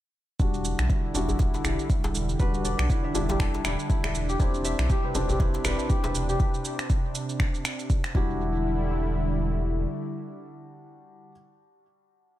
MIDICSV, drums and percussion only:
0, 0, Header, 1, 3, 480
1, 0, Start_track
1, 0, Key_signature, 1, "minor"
1, 0, Tempo, 500000
1, 382, Time_signature, 4, 2, 24, 8
1, 11896, End_track
2, 0, Start_track
2, 0, Title_t, "Djembe"
2, 1103, Note_on_c, 9, 63, 77
2, 1199, Note_off_c, 9, 63, 0
2, 1234, Note_on_c, 9, 64, 87
2, 1330, Note_off_c, 9, 64, 0
2, 1335, Note_on_c, 9, 62, 78
2, 1431, Note_off_c, 9, 62, 0
2, 1481, Note_on_c, 9, 62, 80
2, 1577, Note_off_c, 9, 62, 0
2, 1580, Note_on_c, 9, 64, 85
2, 1676, Note_off_c, 9, 64, 0
2, 1960, Note_on_c, 9, 62, 104
2, 1961, Note_on_c, 9, 63, 89
2, 2056, Note_off_c, 9, 62, 0
2, 2057, Note_off_c, 9, 63, 0
2, 2440, Note_on_c, 9, 63, 63
2, 2536, Note_off_c, 9, 63, 0
2, 3029, Note_on_c, 9, 63, 91
2, 3125, Note_off_c, 9, 63, 0
2, 3159, Note_on_c, 9, 64, 88
2, 3164, Note_on_c, 9, 62, 94
2, 3255, Note_off_c, 9, 64, 0
2, 3260, Note_off_c, 9, 62, 0
2, 3404, Note_on_c, 9, 62, 76
2, 3500, Note_off_c, 9, 62, 0
2, 3881, Note_on_c, 9, 63, 87
2, 3977, Note_off_c, 9, 63, 0
2, 4944, Note_on_c, 9, 63, 85
2, 5040, Note_off_c, 9, 63, 0
2, 5084, Note_on_c, 9, 64, 82
2, 5180, Note_off_c, 9, 64, 0
2, 5184, Note_on_c, 9, 62, 85
2, 5280, Note_off_c, 9, 62, 0
2, 5323, Note_on_c, 9, 62, 72
2, 5419, Note_off_c, 9, 62, 0
2, 5424, Note_on_c, 9, 64, 84
2, 5520, Note_off_c, 9, 64, 0
2, 5796, Note_on_c, 9, 62, 109
2, 5800, Note_on_c, 9, 63, 94
2, 5892, Note_off_c, 9, 62, 0
2, 5896, Note_off_c, 9, 63, 0
2, 11896, End_track
3, 0, Start_track
3, 0, Title_t, "Drums"
3, 381, Note_on_c, 9, 36, 105
3, 382, Note_on_c, 9, 82, 49
3, 477, Note_off_c, 9, 36, 0
3, 478, Note_off_c, 9, 82, 0
3, 519, Note_on_c, 9, 82, 35
3, 615, Note_off_c, 9, 82, 0
3, 621, Note_on_c, 9, 82, 88
3, 717, Note_off_c, 9, 82, 0
3, 759, Note_on_c, 9, 26, 79
3, 759, Note_on_c, 9, 82, 36
3, 855, Note_off_c, 9, 26, 0
3, 855, Note_off_c, 9, 82, 0
3, 861, Note_on_c, 9, 36, 110
3, 862, Note_on_c, 9, 82, 49
3, 957, Note_off_c, 9, 36, 0
3, 958, Note_off_c, 9, 82, 0
3, 1102, Note_on_c, 9, 82, 85
3, 1198, Note_off_c, 9, 82, 0
3, 1239, Note_on_c, 9, 82, 38
3, 1335, Note_off_c, 9, 82, 0
3, 1341, Note_on_c, 9, 36, 108
3, 1341, Note_on_c, 9, 82, 48
3, 1437, Note_off_c, 9, 36, 0
3, 1437, Note_off_c, 9, 82, 0
3, 1479, Note_on_c, 9, 82, 33
3, 1575, Note_off_c, 9, 82, 0
3, 1581, Note_on_c, 9, 26, 89
3, 1582, Note_on_c, 9, 82, 84
3, 1677, Note_off_c, 9, 26, 0
3, 1678, Note_off_c, 9, 82, 0
3, 1720, Note_on_c, 9, 82, 37
3, 1816, Note_off_c, 9, 82, 0
3, 1821, Note_on_c, 9, 36, 111
3, 1823, Note_on_c, 9, 82, 50
3, 1917, Note_off_c, 9, 36, 0
3, 1919, Note_off_c, 9, 82, 0
3, 1960, Note_on_c, 9, 82, 35
3, 2056, Note_off_c, 9, 82, 0
3, 2062, Note_on_c, 9, 82, 86
3, 2158, Note_off_c, 9, 82, 0
3, 2200, Note_on_c, 9, 82, 36
3, 2296, Note_off_c, 9, 82, 0
3, 2301, Note_on_c, 9, 36, 113
3, 2302, Note_on_c, 9, 82, 53
3, 2397, Note_off_c, 9, 36, 0
3, 2398, Note_off_c, 9, 82, 0
3, 2440, Note_on_c, 9, 82, 35
3, 2536, Note_off_c, 9, 82, 0
3, 2543, Note_on_c, 9, 82, 90
3, 2639, Note_off_c, 9, 82, 0
3, 2680, Note_on_c, 9, 26, 82
3, 2681, Note_on_c, 9, 82, 37
3, 2776, Note_off_c, 9, 26, 0
3, 2777, Note_off_c, 9, 82, 0
3, 2781, Note_on_c, 9, 36, 113
3, 2783, Note_on_c, 9, 82, 50
3, 2877, Note_off_c, 9, 36, 0
3, 2879, Note_off_c, 9, 82, 0
3, 3023, Note_on_c, 9, 82, 90
3, 3119, Note_off_c, 9, 82, 0
3, 3161, Note_on_c, 9, 82, 40
3, 3257, Note_off_c, 9, 82, 0
3, 3261, Note_on_c, 9, 36, 115
3, 3263, Note_on_c, 9, 26, 90
3, 3264, Note_on_c, 9, 82, 50
3, 3357, Note_off_c, 9, 36, 0
3, 3359, Note_off_c, 9, 26, 0
3, 3360, Note_off_c, 9, 82, 0
3, 3401, Note_on_c, 9, 82, 35
3, 3497, Note_off_c, 9, 82, 0
3, 3502, Note_on_c, 9, 26, 89
3, 3503, Note_on_c, 9, 82, 86
3, 3598, Note_off_c, 9, 26, 0
3, 3599, Note_off_c, 9, 82, 0
3, 3641, Note_on_c, 9, 82, 40
3, 3737, Note_off_c, 9, 82, 0
3, 3741, Note_on_c, 9, 36, 115
3, 3743, Note_on_c, 9, 82, 51
3, 3837, Note_off_c, 9, 36, 0
3, 3839, Note_off_c, 9, 82, 0
3, 3879, Note_on_c, 9, 26, 92
3, 3880, Note_on_c, 9, 82, 36
3, 3975, Note_off_c, 9, 26, 0
3, 3976, Note_off_c, 9, 82, 0
3, 3982, Note_on_c, 9, 82, 93
3, 4078, Note_off_c, 9, 82, 0
3, 4120, Note_on_c, 9, 82, 38
3, 4216, Note_off_c, 9, 82, 0
3, 4222, Note_on_c, 9, 36, 115
3, 4222, Note_on_c, 9, 82, 54
3, 4318, Note_off_c, 9, 36, 0
3, 4318, Note_off_c, 9, 82, 0
3, 4360, Note_on_c, 9, 82, 36
3, 4456, Note_off_c, 9, 82, 0
3, 4463, Note_on_c, 9, 82, 95
3, 4559, Note_off_c, 9, 82, 0
3, 4599, Note_on_c, 9, 26, 80
3, 4600, Note_on_c, 9, 82, 38
3, 4695, Note_off_c, 9, 26, 0
3, 4696, Note_off_c, 9, 82, 0
3, 4702, Note_on_c, 9, 36, 122
3, 4702, Note_on_c, 9, 82, 53
3, 4798, Note_off_c, 9, 36, 0
3, 4798, Note_off_c, 9, 82, 0
3, 4942, Note_on_c, 9, 82, 94
3, 5038, Note_off_c, 9, 82, 0
3, 5080, Note_on_c, 9, 82, 40
3, 5176, Note_off_c, 9, 82, 0
3, 5182, Note_on_c, 9, 36, 120
3, 5184, Note_on_c, 9, 82, 52
3, 5278, Note_off_c, 9, 36, 0
3, 5280, Note_off_c, 9, 82, 0
3, 5321, Note_on_c, 9, 82, 35
3, 5417, Note_off_c, 9, 82, 0
3, 5422, Note_on_c, 9, 26, 87
3, 5422, Note_on_c, 9, 82, 92
3, 5518, Note_off_c, 9, 26, 0
3, 5518, Note_off_c, 9, 82, 0
3, 5560, Note_on_c, 9, 82, 41
3, 5656, Note_off_c, 9, 82, 0
3, 5662, Note_on_c, 9, 36, 121
3, 5662, Note_on_c, 9, 82, 54
3, 5758, Note_off_c, 9, 36, 0
3, 5758, Note_off_c, 9, 82, 0
3, 5800, Note_on_c, 9, 82, 39
3, 5896, Note_off_c, 9, 82, 0
3, 5902, Note_on_c, 9, 82, 93
3, 5998, Note_off_c, 9, 82, 0
3, 6041, Note_on_c, 9, 82, 39
3, 6137, Note_off_c, 9, 82, 0
3, 6142, Note_on_c, 9, 82, 52
3, 6143, Note_on_c, 9, 36, 116
3, 6238, Note_off_c, 9, 82, 0
3, 6239, Note_off_c, 9, 36, 0
3, 6280, Note_on_c, 9, 82, 36
3, 6376, Note_off_c, 9, 82, 0
3, 6382, Note_on_c, 9, 82, 94
3, 6478, Note_off_c, 9, 82, 0
3, 6519, Note_on_c, 9, 26, 76
3, 6520, Note_on_c, 9, 82, 39
3, 6615, Note_off_c, 9, 26, 0
3, 6616, Note_off_c, 9, 82, 0
3, 6622, Note_on_c, 9, 36, 120
3, 6623, Note_on_c, 9, 82, 53
3, 6718, Note_off_c, 9, 36, 0
3, 6719, Note_off_c, 9, 82, 0
3, 6863, Note_on_c, 9, 82, 94
3, 6959, Note_off_c, 9, 82, 0
3, 7001, Note_on_c, 9, 82, 40
3, 7097, Note_off_c, 9, 82, 0
3, 7102, Note_on_c, 9, 26, 86
3, 7102, Note_on_c, 9, 36, 118
3, 7103, Note_on_c, 9, 82, 52
3, 7198, Note_off_c, 9, 26, 0
3, 7198, Note_off_c, 9, 36, 0
3, 7199, Note_off_c, 9, 82, 0
3, 7241, Note_on_c, 9, 82, 37
3, 7337, Note_off_c, 9, 82, 0
3, 7344, Note_on_c, 9, 26, 88
3, 7345, Note_on_c, 9, 82, 90
3, 7440, Note_off_c, 9, 26, 0
3, 7441, Note_off_c, 9, 82, 0
3, 7481, Note_on_c, 9, 82, 42
3, 7577, Note_off_c, 9, 82, 0
3, 7583, Note_on_c, 9, 36, 117
3, 7584, Note_on_c, 9, 82, 53
3, 7679, Note_off_c, 9, 36, 0
3, 7680, Note_off_c, 9, 82, 0
3, 7720, Note_on_c, 9, 26, 88
3, 7721, Note_on_c, 9, 82, 39
3, 7816, Note_off_c, 9, 26, 0
3, 7817, Note_off_c, 9, 82, 0
3, 7822, Note_on_c, 9, 36, 109
3, 7918, Note_off_c, 9, 36, 0
3, 11896, End_track
0, 0, End_of_file